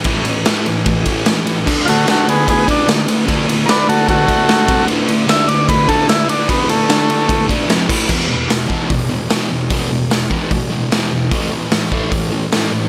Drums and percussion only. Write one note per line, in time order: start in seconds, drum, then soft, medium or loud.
0.04 kick loud
0.04 ride loud
0.25 ride medium
0.45 snare loud
0.45 ride loud
0.66 ride medium
0.86 kick loud
0.86 ride loud
1.05 kick medium
1.05 ride medium
1.26 snare loud
1.26 ride loud
1.47 ride medium
1.67 kick loud
1.67 crash loud
1.88 ride medium
2.07 snare loud
2.07 ride loud
2.28 ride medium
2.48 kick loud
2.48 ride loud
2.68 kick medium
2.68 ride medium
2.88 snare loud
2.88 ride loud
3.08 ride loud
3.28 kick loud
3.28 ride loud
3.49 ride medium
3.69 snare loud
3.69 ride loud
3.89 ride medium
4.09 kick loud
4.09 ride loud
4.28 kick medium
4.28 ride medium
4.49 snare loud
4.49 ride loud
4.68 kick loud
4.68 ride medium
4.88 ride loud
5.08 ride medium
5.29 snare loud
5.29 ride loud
5.48 ride medium
5.69 kick loud
5.69 ride loud
5.89 kick medium
5.89 ride medium
6.09 snare loud
6.09 ride loud
6.29 ride loud
6.49 kick loud
6.49 ride loud
6.69 ride medium
6.89 snare loud
6.89 ride loud
7.10 ride medium
7.29 kick loud
7.29 ride loud
7.49 kick medium
7.49 ride medium
7.69 snare loud
7.69 ride medium
7.89 kick loud
7.89 crash loud
8.09 kick loud
8.09 crash loud
8.50 snare loud
8.50 open hi-hat medium
8.70 kick medium
8.90 kick loud
8.90 open hi-hat medium
9.30 snare loud
9.30 open hi-hat medium
9.70 kick loud
9.70 open hi-hat medium
10.11 snare loud
10.11 open hi-hat medium
10.31 kick medium
10.51 kick loud
10.51 open hi-hat medium
10.92 snare loud
10.92 open hi-hat medium
11.31 kick loud
11.31 open hi-hat medium
11.71 snare loud
11.71 open hi-hat medium
11.92 kick medium
12.12 kick loud
12.12 open hi-hat medium
12.52 snare loud
12.52 open hi-hat medium